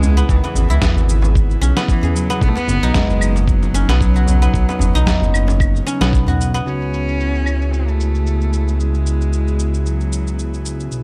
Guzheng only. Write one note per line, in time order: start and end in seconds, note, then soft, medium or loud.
0.00 0.17 B3 loud
0.00 1.61 C#4 loud
0.00 0.70 E4 loud
0.00 2.02 G#4 medium
0.17 0.43 B3 loud
0.44 0.81 B3 medium
0.70 2.89 E4 loud
0.82 1.76 B3 medium
1.61 3.74 C#4 loud
1.77 2.29 B3 loud
2.03 4.30 G#4 medium
2.30 2.56 B3 loud
2.57 2.94 B3 medium
2.83 4.95 D#4 loud
2.95 3.89 B3 medium
3.74 5.86 C#4 loud
3.89 4.42 B3 loud
4.16 6.27 F#4 medium
4.42 4.68 B3 loud
4.69 5.06 B3 medium
4.95 7.65 D#4 loud
5.07 6.01 B3 medium
5.87 8.76 C#4 loud
6.01 6.54 B3 loud
6.28 8.72 F#4 medium
6.54 9.65 B3 loud